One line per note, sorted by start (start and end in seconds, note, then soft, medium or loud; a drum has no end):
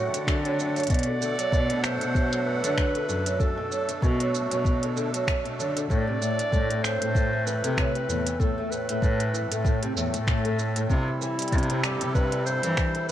0.00 0.12 F#2 medium
0.00 0.90 D3 medium
0.00 10.90 A3 medium
0.00 0.90 C4 medium
0.00 0.58 F#4 medium
0.00 2.91 F#5 medium
0.14 0.21 D3 medium
0.14 0.82 D3 medium
0.14 closed hi-hat medium
0.14 shaker soft
0.27 0.43 F#2 loud
0.27 finger snap medium
0.27 kick loud
0.27 shaker soft
0.45 0.57 F#3 medium
0.45 closed hi-hat soft
0.58 0.74 F#2 medium
0.58 shaker medium
0.76 0.88 F#2 loud
0.76 closed hi-hat soft
0.76 shaker soft
0.80 closed hi-hat soft
0.83 closed hi-hat soft
0.87 1.05 F#2 medium
0.87 5.90 B2 medium
0.87 1.01 B2 medium
0.87 1.84 D5 loud
0.87 kick loud
0.87 closed hi-hat soft
0.90 closed hi-hat soft
0.90 shaker soft
0.94 closed hi-hat soft
0.99 closed hi-hat soft
1.03 1.20 D3 medium
1.03 closed hi-hat soft
1.21 1.37 D3 loud
1.21 13.12 A4 loud
1.21 shaker medium
1.38 1.52 F#3 medium
1.38 closed hi-hat medium
1.38 shaker soft
1.52 1.68 F#2 loud
1.52 1.91 B2 loud
1.52 kick loud
1.52 shaker soft
1.68 1.82 B2 loud
1.68 7.30 D4 loud
1.68 closed hi-hat soft
1.83 1.99 F#2 loud
1.83 2.47 C5 loud
1.83 finger snap medium
1.83 shaker medium
2.01 2.53 B2 medium
2.01 2.09 D3 medium
2.01 closed hi-hat medium
2.01 shaker soft
2.15 2.31 F#2 loud
2.15 kick loud
2.15 shaker soft
2.32 2.45 F#3 medium
2.32 closed hi-hat soft
2.46 2.62 F#2 medium
2.46 3.41 B4 loud
2.64 2.76 F#2 loud
2.64 2.72 D3 medium
2.64 closed hi-hat medium
2.64 shaker medium
2.77 2.93 F#2 medium
2.77 finger snap medium
2.77 kick loud
2.77 shaker soft
2.95 3.07 D3 medium
2.95 closed hi-hat soft
3.09 3.20 F#2 medium
3.09 3.24 D3 loud
3.09 shaker medium
3.26 3.39 F#3 medium
3.26 closed hi-hat medium
3.26 shaker soft
3.40 3.56 F#2 medium
3.40 4.02 A4 loud
3.40 kick loud
3.40 shaker soft
3.57 3.70 B2 medium
3.71 3.87 F#2 medium
3.71 shaker medium
3.89 3.97 D3 medium
3.89 closed hi-hat soft
3.89 shaker soft
4.02 4.18 F#2 loud
4.02 4.41 B2 loud
4.02 5.23 F#4 medium
4.02 kick loud
4.02 shaker soft
4.20 4.32 F#3 medium
4.20 closed hi-hat soft
4.35 shaker medium
4.51 4.63 F#2 loud
4.51 5.03 B2 medium
4.51 closed hi-hat medium
4.51 shaker soft
4.65 kick loud
4.65 shaker soft
4.83 4.95 D3 medium
4.83 closed hi-hat soft
4.96 5.12 D3 loud
4.96 shaker medium
5.14 5.27 F#3 medium
5.14 closed hi-hat medium
5.14 shaker soft
5.27 5.43 F#2 medium
5.27 finger snap medium
5.27 kick loud
5.27 shaker soft
5.45 5.57 B2 loud
5.45 closed hi-hat soft
5.59 5.74 F#2 medium
5.59 5.80 D3 medium
5.59 shaker medium
5.76 5.84 D3 medium
5.76 closed hi-hat medium
5.76 shaker medium
5.90 6.01 A2 loud
5.90 10.90 A2 medium
5.90 6.06 A2 loud
5.90 6.85 D5 loud
5.90 kick loud
5.90 shaker soft
6.07 6.20 C3 medium
6.21 6.37 A2 loud
6.21 shaker medium
6.39 6.47 E3 medium
6.39 closed hi-hat medium
6.39 shaker soft
6.48 12.48 C4 medium
6.52 6.68 A2 loud
6.52 6.91 A2 loud
6.52 kick loud
6.52 shaker soft
6.70 6.82 A3 medium
6.70 closed hi-hat soft
6.83 7.00 A2 medium
6.83 7.47 C5 loud
6.83 finger snap medium
6.83 shaker medium
7.01 7.14 A2 medium
7.01 7.53 A2 medium
7.01 closed hi-hat medium
7.15 7.31 A2 medium
7.15 kick loud
7.15 shaker soft
7.33 7.45 E3 medium
7.45 7.62 E3 loud
7.45 8.41 B4 loud
7.45 shaker medium
7.64 7.73 C3 loud
7.64 7.77 A3 medium
7.64 closed hi-hat medium
7.64 shaker soft
7.77 7.93 A2 loud
7.77 finger snap medium
7.77 kick loud
7.77 shaker soft
7.95 8.07 C3 medium
7.95 closed hi-hat soft
8.09 8.20 E2 medium
8.09 8.24 A2 loud
8.09 shaker medium
8.27 8.34 E3 medium
8.27 closed hi-hat medium
8.27 shaker soft
8.39 8.56 A2 medium
8.39 8.72 A4 medium
8.39 kick loud
8.39 shaker soft
8.58 8.70 A3 medium
8.71 8.87 A2 medium
8.71 9.96 B4 loud
8.71 shaker medium
8.89 9.01 A2 loud
8.89 closed hi-hat soft
8.89 shaker soft
9.02 9.41 A2 loud
9.02 9.18 A2 medium
9.02 kick loud
9.02 shaker soft
9.20 9.32 E3 medium
9.20 closed hi-hat soft
9.34 9.49 E3 medium
9.34 shaker medium
9.51 9.96 A2 medium
9.51 9.64 A3 medium
9.51 closed hi-hat medium
9.51 shaker soft
9.65 9.81 A2 loud
9.65 kick loud
9.65 shaker soft
9.83 9.95 C3 loud
9.83 closed hi-hat soft
9.96 10.07 E2 medium
9.96 10.12 A2 loud
9.96 shaker medium
10.14 10.82 A2 loud
10.14 10.22 E3 medium
10.14 closed hi-hat medium
10.14 shaker soft
10.27 10.43 A2 loud
10.27 finger snap medium
10.27 kick loud
10.27 shaker soft
10.45 10.57 A3 medium
10.45 closed hi-hat soft
10.59 10.74 A2 medium
10.59 shaker medium
10.76 10.89 A2 loud
10.76 closed hi-hat medium
10.76 shaker soft
10.90 11.06 G2 medium
10.90 11.01 C3 loud
10.90 13.12 C3 medium
10.90 11.86 E4 loud
10.90 kick medium
10.90 shaker soft
11.04 11.20 E3 medium
11.04 13.12 G3 medium
11.21 11.37 E3 loud
11.21 shaker medium
11.39 11.52 G3 medium
11.39 closed hi-hat medium
11.39 shaker soft
11.42 closed hi-hat soft
11.48 closed hi-hat soft
11.52 11.68 G2 loud
11.52 11.91 C3 loud
11.52 kick loud
11.52 closed hi-hat soft
11.52 shaker soft
11.58 closed hi-hat soft
11.63 closed hi-hat soft
11.70 11.82 C3 loud
11.70 13.12 E4 medium
11.70 closed hi-hat soft
11.83 11.99 G2 loud
11.83 12.14 G4 loud
11.83 finger snap medium
11.83 shaker medium
12.01 12.53 C3 medium
12.01 12.09 E3 medium
12.01 closed hi-hat medium
12.01 shaker soft
12.15 12.31 G2 loud
12.15 12.44 B4 loud
12.15 kick loud
12.15 shaker soft
12.32 12.45 G3 medium
12.32 closed hi-hat soft
12.46 12.62 G2 medium
12.46 13.04 C5 loud
12.46 shaker medium
12.63 12.76 G2 loud
12.63 12.72 E3 loud
12.63 closed hi-hat medium
12.63 shaker soft
12.77 12.93 G2 medium
12.77 finger snap medium
12.77 kick loud
12.77 shaker soft
12.95 13.07 E3 medium
12.95 closed hi-hat soft
13.09 13.12 B4 loud